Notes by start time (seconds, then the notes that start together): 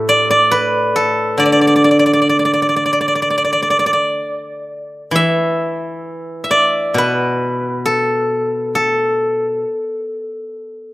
Already playing: A2 G4 A4
0.09 D5
0.31 D5
0.51 B4
0.96 A4
1.38 D3 D5
1.45 D5
1.52 D5
1.61 D5
1.67 D5
1.76 D5
1.84 D5
1.91 D5
1.99 D5
2.06 D5
2.13 D5
2.22 D5
2.29 D5
2.39 D5
2.45 D5
2.54 D5
2.62 D5
2.69 D5
2.76 D5
2.86 D5
2.93 D5
3.01 D5
3.08 D5
3.15 D5
3.22 D5
3.30 D5
3.38 D5
3.44 D5
3.53 D5
3.62 D5
3.70 D5
3.79 D5
3.86 D5
3.93 D5
5.11 E3
5.16 E5
6.44 E5
6.51 D5
6.94 B2 B4
7.86 A4
8.75 A4